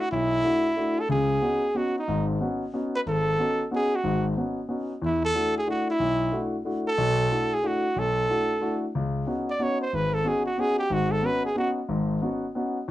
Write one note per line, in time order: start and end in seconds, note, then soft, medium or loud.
0.00 0.11 F#4 medium
0.12 0.39 B1 medium
0.12 1.01 E4 loud
0.44 0.65 A3 medium
0.44 0.65 D4 soft
0.44 0.65 E4 soft
0.44 0.66 F#4 medium
0.76 0.98 A3 medium
0.76 0.98 D4 soft
0.76 0.98 E4 soft
0.76 0.98 F#4 medium
1.00 1.10 A4 medium
1.09 1.37 C#2 medium
1.09 1.37 C#3 medium
1.09 1.78 G#4 medium
1.41 1.63 B3 medium
1.41 1.63 C#4 soft
1.41 1.63 D#4 soft
1.41 1.63 F#4 medium
1.75 1.96 B3 soft
1.75 1.96 C#4 soft
1.75 1.96 D#4 soft
1.75 1.97 F#4 medium
1.75 1.96 F#4 medium
1.98 2.27 D#4 medium
2.08 2.36 G#1 medium
2.08 2.36 G#2 medium
2.41 2.62 B3 medium
2.41 2.62 C#4 soft
2.41 2.62 D#4 soft
2.41 2.62 F#4 medium
2.74 2.95 B3 medium
2.74 2.95 C#4 soft
2.74 2.95 D#4 soft
2.74 2.95 F#4 medium
2.95 3.00 B4 loud
3.06 3.34 G#1 medium
3.06 3.68 A4 medium
3.39 3.60 B3 medium
3.39 3.60 C#4 soft
3.39 3.60 D#4 soft
3.39 3.60 F#4 medium
3.71 3.93 B3 medium
3.71 3.93 C#4 soft
3.71 3.93 D#4 soft
3.71 3.93 F#4 medium
3.75 3.97 G#4 medium
3.96 4.26 F#4 medium
4.04 4.32 G#1 medium
4.04 4.32 G#2 medium
4.37 4.58 B3 medium
4.37 4.58 C#4 soft
4.37 4.58 D#4 soft
4.37 4.59 F#4 medium
4.69 4.90 B3 soft
4.69 4.90 C#4 soft
4.69 4.91 D#4 soft
4.69 4.91 F#4 medium
5.02 5.30 E2 medium
5.02 5.22 E4 medium
5.25 5.54 A4 loud
5.34 5.56 A3 medium
5.34 5.56 D4 soft
5.34 5.56 E4 soft
5.34 5.56 F#4 medium
5.57 5.67 G#4 medium
5.67 5.89 A3 medium
5.67 5.89 D4 soft
5.67 5.89 E4 soft
5.67 5.89 F#4 medium
5.67 5.88 F#4 medium
5.90 6.50 E4 medium
6.00 6.28 B1 medium
6.32 6.54 A3 medium
6.32 6.54 D4 soft
6.32 6.54 E4 soft
6.32 6.54 F#4 medium
6.65 6.87 A3 medium
6.65 6.87 D4 soft
6.65 6.87 E4 soft
6.65 6.87 F#4 medium
6.88 7.55 A4 loud
6.98 7.26 B1 medium
6.98 7.26 B2 medium
7.30 7.52 A3 soft
7.30 7.52 D4 soft
7.30 7.52 E4 soft
7.30 7.53 F#4 medium
7.54 7.68 G#4 medium
7.63 7.85 A3 medium
7.63 7.85 D4 soft
7.63 7.85 E4 soft
7.63 7.85 F#4 medium
7.63 8.00 F#4 medium
7.96 8.24 B1 medium
7.96 8.83 A4 medium
8.29 8.51 A3 soft
8.29 8.51 D4 soft
8.29 8.51 E4 soft
8.29 8.51 F#4 medium
8.61 8.83 A3 medium
8.61 8.83 D4 soft
8.61 8.83 E4 soft
8.61 8.83 F#4 medium
8.95 9.23 C#2 medium
9.27 9.49 B3 soft
9.27 9.49 C#4 soft
9.27 9.49 D#4 soft
9.27 9.49 F#4 medium
9.50 9.64 D5 medium
9.59 9.81 B3 soft
9.59 9.81 C#4 soft
9.59 9.82 D#4 soft
9.59 9.82 F#4 medium
9.59 9.81 C#5 medium
9.81 9.96 C5 medium
9.93 10.21 G#1 medium
9.93 10.15 B4 medium
10.14 10.29 A4 medium
10.25 10.47 B3 soft
10.25 10.47 C#4 soft
10.25 10.47 D#4 soft
10.25 10.47 F#4 medium
10.25 10.46 G#4 medium
10.46 10.61 F#4 medium
10.58 10.80 B3 medium
10.58 10.80 C#4 medium
10.58 10.80 D#4 soft
10.58 10.80 F#4 medium
10.58 10.78 G#4 medium
10.78 10.94 G4 medium
10.90 11.18 G#1 medium
10.90 11.18 G#2 medium
10.90 11.13 F#4 medium
11.11 11.27 A4 medium
11.22 11.45 B3 medium
11.22 11.45 C#4 soft
11.22 11.45 D#4 soft
11.22 11.45 F#4 medium
11.22 11.45 B4 medium
11.45 11.56 G#4 medium
11.55 11.77 B3 medium
11.55 11.78 C#4 soft
11.55 11.78 D#4 soft
11.55 11.78 F#4 medium
11.55 11.70 F#4 medium
11.89 12.17 G#1 medium
11.89 12.17 G#2 medium
12.22 12.43 B3 medium
12.22 12.44 C#4 soft
12.22 12.44 D#4 soft
12.22 12.44 F#4 medium
12.55 12.76 B3 medium
12.55 12.77 C#4 medium
12.55 12.77 D#4 soft
12.55 12.77 F#4 medium